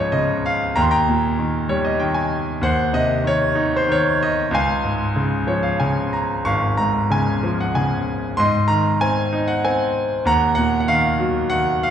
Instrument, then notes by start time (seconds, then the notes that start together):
grand piano
Already playing: C#2 G#2 C#3 F3 C#5 D#5 F5 G#5
0.12 C#3 D#5
0.46 F5
0.76 D#2 G5 A#5
0.81 C6
0.91 G5 A#5
1.08 A#2
1.39 D#3
1.69 G3 C#5
1.85 D#5
1.99 D#3 G5
2.14 G#5
2.61 D#2 C5 F#5
2.93 C3 D#5
3.24 D#3 C#5
3.55 D#4
3.76 C5
3.88 D#3 C#5
4.23 D#5
4.51 C#2 F5 G#5
4.84 G#2
5.16 C#3
5.47 F3 C#5
5.63 F5
5.80 C#3 G#5
6.13 A#5
6.45 G#1 F5 C#6
6.77 G#2 A#5
7.10 C#3 G#5
7.43 F3
7.61 F#5
7.75 C#3 G#5
8.37 G#2 D#5 C6
8.68 D#3 A#5
9.01 C4 G#5
9.33 D#4
9.48 F#5
9.64 C4 G#5
10.25 D#2 F#5 A#5
10.55 A#2 F#5
10.80 F#5
10.88 D#3 F5
11.19 F#3
11.50 D#3 F#5
11.83 F5